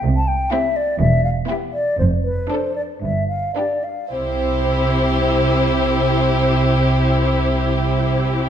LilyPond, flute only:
\new Staff \with { instrumentName = "Flute" } { \time 4/4 \key c \major \tempo 4 = 110 r16 a''16 g''8 e''8 d''8 e''8 f''8 e''8 d''8 | c''8 b'8 c''8 d''8 e''8 f''8 d''8 f''8 | c''1~ | c''1 | }